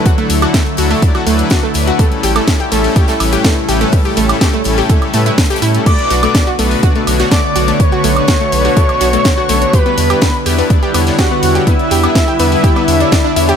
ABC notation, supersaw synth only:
X:1
M:4/4
L:1/16
Q:1/4=124
K:Bm
V:1 name="Supersaw synth"
[F,A,D] [F,A,DEA]2 [F,A,DEA] [F,A,DEA] z [F,A,DEA]2 [F,A,DEd] [F,A,DEA] [F,A,DEB] [F,A,DEB] [F,A,DEd] z [F,A,DEB]2 | [A,,G,A,CEA] [A,,G,A,CEA]2 [A,,G,A,CEA] [A,,G,A,CEA] z [A,,G,A,CEA]2 [A,,G,A,CEc] [A,,G,A,CEA] [A,,G,A,CEB] [A,,G,A,CEB] [A,,G,A,CEc] z [A,,G,A,CEB]2 | [A,,G,A,CE] [A,,G,A,CEA]2 [A,,G,A,CEA] [A,,G,A,CEA] z [A,,G,A,CEA]2 [A,,G,A,CEc] [A,,G,A,CEA] [A,,G,A,CEB] [A,,G,A,CEB] z [A,,G,A,CEA]2 [G,A,CEA] | z [B,,A,B,DFB]2 [B,,A,B,DFB] [B,,B,FB] z [B,,A,B,DFB]2 [B,,A,DFd] [B,,A,B,DFB] [B,,A,B,DFc] [B,,A,B,DFc] [B,,A,B,DFd] z [B,,A,B,DFc]2 |
[B,,A,B,DFB] [B,,A,B,DFB]2 [B,,A,B,DFB] [B,,A,B,DFB] z [B,,A,B,DFB]2 [B,,A,B,DFd] [B,,A,B,DFB] [B,,A,B,DFc] [B,,A,B,DFc] [B,,A,B,DFd] z [A,B,DFc]2 | [G,B,DEB] [G,B,DEB]2 [G,B,DEB] [G,B,DEB] z [G,B,DEB]2 [G,B,DEd] [G,B,DEB] [G,B,DEc] [G,B,DEc] [G,Dd] z [G,B,DEc]2 | [G,B,DEB] [G,B,DEB]2 [G,B,DEB] [G,B,EB] z [G,B,DEB]2 [G,B,DEd] [G,B,DEB] [G,B,DEc] [G,B,DEc] [G,B,DEd] z [G,B,DEc]2 |]